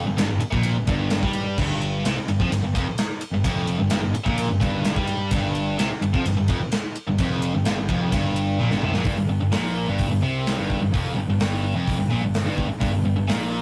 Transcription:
0.07 picked electric bass G1, distorted electric guitar G2
0.17 picked electric bass G1, distorted electric guitar G2, snare, ride
0.29 picked electric bass G1, distorted electric guitar G2
0.40 muted distorted electric guitar stroke, muted overdriven electric guitar stroke, muted picked electric bass stroke, ride
0.51 picked electric bass A#1, distorted electric guitar A#2, kick
0.63 ride
0.76 picked electric bass G1, distorted electric guitar G2
0.87 picked electric bass G1, distorted electric guitar G2, kick, ride
1.10 snare, ride
1.23 picked electric bass G2, distorted electric guitar G3, kick
1.33 ride
1.57 picked electric bass G1, distorted electric guitar G2, kick, crash
1.82 ride
2.05 picked electric bass C2, distorted electric guitar C3, snare, ride
2.17 muted distorted electric guitar stroke, muted picked electric bass stroke, muted overdriven electric guitar stroke
2.28 picked electric bass G1, distorted electric guitar G2, ride
2.40 picked electric bass F2, distorted electric guitar F3, kick
2.52 picked electric bass G1, distorted electric guitar G2, ride
2.63 picked electric bass G1, distorted electric guitar G2
2.75 picked electric bass F1, distorted electric guitar F2, kick, ride
2.98 snare, ride
3.21 ride
3.31 picked electric bass G1, distorted electric guitar G2
3.44 picked electric bass F1, distorted electric guitar F2, kick, ride
3.67 ride
3.79 picked electric bass G1, distorted electric guitar G2
3.90 picked electric bass G1, distorted electric guitar G2, snare, ride
4.02 picked electric bass G1, distorted electric guitar G2
4.14 muted distorted electric guitar stroke, muted overdriven electric guitar stroke, muted picked electric bass stroke, ride
4.24 picked electric bass A#1, distorted electric guitar A#2, kick
4.38 ride
4.49 picked electric bass G1, distorted electric guitar G2
4.60 picked electric bass G1, distorted electric guitar G2, kick, ride
4.85 snare, ride
4.96 picked electric bass G2, distorted electric guitar G3, kick
5.07 ride
5.31 picked electric bass G1, distorted electric guitar G2, kick, ride
5.55 ride
5.78 picked electric bass C2, distorted electric guitar C3, snare, ride
5.90 muted picked electric bass stroke, muted distorted electric guitar stroke, muted overdriven electric guitar stroke
6.02 picked electric bass G1, distorted electric guitar G2, ride
6.14 picked electric bass F2, distorted electric guitar F3, kick
6.25 picked electric bass G1, distorted electric guitar G2, ride
6.37 picked electric bass G1, distorted electric guitar G2
6.48 picked electric bass F1, distorted electric guitar F2, kick, ride
6.72 snare, ride
6.96 ride
7.07 picked electric bass G1, distorted electric guitar G2
7.18 picked electric bass F1, distorted electric guitar F2, kick, ride
7.42 ride
7.54 picked electric bass G1, distorted electric guitar G2
7.64 picked electric bass G1, distorted electric guitar G2, snare, ride
7.78 picked electric bass G1, distorted electric guitar G2
7.89 picked electric bass F1, distorted electric guitar F2, kick, ride
8.12 picked electric bass G1, distorted electric guitar G2, kick, ride
8.36 ride
8.58 picked electric bass A#1, distorted electric guitar A#2, high tom
8.70 picked electric bass G1, distorted electric guitar G2, snare
8.81 picked electric bass C2, distorted electric guitar C3, mid tom
8.94 picked electric bass A#1, distorted electric guitar A#2, snare
9.04 picked electric bass G1, distorted electric guitar G2, kick, open hi-hat
9.18 picked electric bass G1, distorted electric guitar G2
9.29 picked electric bass G1, distorted electric guitar G2
9.41 picked electric bass G1, distorted electric guitar G2
9.52 picked electric bass A#1, distorted electric guitar A#2, snare, open hi-hat
9.88 picked electric bass G1, distorted electric guitar G2
9.98 kick, open hi-hat
10.11 picked electric bass G1, distorted electric guitar G2
10.22 picked electric bass C2, distorted electric guitar C3
10.46 snare, open hi-hat
10.57 picked electric bass G1, distorted electric guitar G2
10.70 kick
10.82 picked electric bass G1, distorted electric guitar G2
10.94 picked electric bass F1, distorted electric guitar F2, kick, open hi-hat
11.16 picked electric bass G1, distorted electric guitar G2
11.28 picked electric bass G1, distorted electric guitar G2
11.40 picked electric bass G1, distorted electric guitar G2, snare, open hi-hat
11.76 picked electric bass F1, distorted electric guitar F2
11.88 kick, open hi-hat
11.99 picked electric bass G1, distorted electric guitar G2
12.11 picked electric bass A#1, distorted electric guitar A#2
12.22 picked electric bass G1, distorted electric guitar G2
12.34 snare, open hi-hat
12.45 picked electric bass G1, distorted electric guitar G2
12.58 kick
12.69 muted overdriven electric guitar stroke, muted distorted electric guitar stroke, muted picked electric bass stroke
12.81 picked electric bass G1, distorted electric guitar G2, kick, open hi-hat
12.93 picked electric bass G1, distorted electric guitar G2
13.05 picked electric bass G1, distorted electric guitar G2
13.16 picked electric bass G1, distorted electric guitar G2
13.28 picked electric bass A#1, distorted electric guitar A#2, snare, open hi-hat

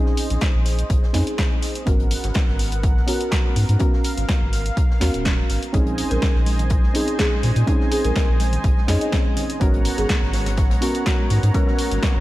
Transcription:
Already playing: synth stab C4 C#4 D#4 G#4, analog synth pad G#4 C5 D#5
0.06 snare
0.17 closed hi-hat, open hi-hat
0.30 analog synth bass A#1, snare, closed hi-hat
0.41 kick, snare, closed hi-hat
0.54 analog synth bass A#1
0.65 snare, closed hi-hat, open hi-hat
0.79 closed hi-hat
0.90 analog synth bass A#1, kick, closed hi-hat
1.03 snare
1.13 analog synth bass F2, synth stab C4 C#4 D#4 G#4, snare, closed hi-hat, open hi-hat
1.27 closed hi-hat
1.38 kick, snare, closed hi-hat
1.62 snare, closed hi-hat, open hi-hat
1.75 closed hi-hat
1.86 analog synth bass G#1, synth stab B3 C#4 F#4 A#4, analog synth pad B3 A#4 F#5, kick, closed hi-hat
2.00 closed hi-hat
2.11 closed hi-hat, open hi-hat
2.23 analog synth bass G#1, snare, closed hi-hat
2.34 kick, snare, closed hi-hat
2.48 analog synth bass G#1, snare
2.59 open hi-hat
2.72 closed hi-hat
2.83 kick, closed hi-hat
2.97 snare
3.07 synth stab B3 C#4 F#4 A#4, closed hi-hat, open hi-hat
3.21 closed hi-hat
3.31 kick, snare, closed hi-hat
3.56 analog synth bass G#2, snare, closed hi-hat, open hi-hat
3.69 analog synth bass G#2, closed hi-hat
3.79 synth stab B3 C#4 F#4 A#4, analog synth pad F5, kick, closed hi-hat
3.93 snare
4.04 closed hi-hat, open hi-hat
4.17 analog synth bass G#1, snare, closed hi-hat
4.29 kick, snare, closed hi-hat
4.42 analog synth bass G#1
4.52 snare, closed hi-hat, open hi-hat
4.66 closed hi-hat
4.77 kick, closed hi-hat
4.90 snare
5.00 analog synth bass D#2, synth stab B3 C#4 F#4 A#4, snare, closed hi-hat, open hi-hat
5.14 analog synth bass D#1, closed hi-hat
5.25 kick, snare, closed hi-hat
5.49 analog synth bass G#1, snare, closed hi-hat, open hi-hat
5.63 closed hi-hat
5.73 analog synth bass A#1, synth stab C4 C#4 D#4 G#4, analog synth pad C5 D#5 G#5, kick, closed hi-hat, high conga
5.87 closed hi-hat
5.98 closed hi-hat, open hi-hat
6.11 analog synth bass A#1, marimba A#4, snare, closed hi-hat, high conga
6.22 kick, snare, closed hi-hat
6.35 analog synth bass A#1, snare
6.46 open hi-hat, high conga
6.59 closed hi-hat, low conga
6.70 kick, closed hi-hat
6.83 snare, high conga
6.94 synth stab C4 C#4 D#4 G#4, closed hi-hat, open hi-hat
7.08 closed hi-hat
7.19 marimba G#4, kick, snare, closed hi-hat
7.32 high conga
7.43 analog synth bass A#2, snare, closed hi-hat, open hi-hat, low conga
7.56 analog synth bass A#2, closed hi-hat
7.66 synth stab C4 C#4 D#4 G#4, kick, closed hi-hat, high conga
7.81 snare
7.92 marimba G#4, closed hi-hat, open hi-hat
8.04 analog synth bass A#1, marimba A#4, snare, closed hi-hat, high conga
8.16 kick, snare, closed hi-hat
8.29 analog synth bass A#1
8.40 snare, closed hi-hat, open hi-hat, high conga
8.53 closed hi-hat, low conga
8.64 analog synth bass A#1, kick, closed hi-hat
8.77 snare, high conga
8.87 analog synth bass F2, synth stab C4 C#4 D#4 G#4, marimba D#5, snare, closed hi-hat, open hi-hat
9.01 marimba D#5, closed hi-hat
9.12 kick, snare, closed hi-hat
9.25 high conga
9.37 snare, closed hi-hat, open hi-hat, low conga
9.50 closed hi-hat
9.60 analog synth bass G#1, synth stab B3 C#4 F#4 A#4, analog synth pad B3 C#5 F#5 A#5, kick, closed hi-hat, riser, high conga
9.74 closed hi-hat
9.85 closed hi-hat, open hi-hat
9.98 analog synth bass G#1, marimba G#4, snare, closed hi-hat, high conga
10.09 kick, snare, closed hi-hat
10.22 analog synth bass G#1, snare
10.33 snare, closed hi-hat, open hi-hat, high conga
10.46 snare, closed hi-hat, low conga
10.57 kick, snare, closed hi-hat
10.70 snare, closed hi-hat, high conga
10.81 synth stab B3 C#4 F#4 A#4, closed hi-hat, open hi-hat
10.95 closed hi-hat
11.06 marimba F#4, kick, snare, closed hi-hat
11.19 high conga
11.30 analog synth bass G#2, snare, closed hi-hat, open hi-hat, low conga
11.43 analog synth bass G#2, closed hi-hat
11.53 synth stab B3 C#4 F#4 A#4, marimba F#4, kick, closed hi-hat, high conga
11.67 marimba F#4, snare
11.78 closed hi-hat, open hi-hat
11.91 analog synth bass G#1, snare, closed hi-hat, high conga
12.03 kick, snare, closed hi-hat
12.16 analog synth bass G#1

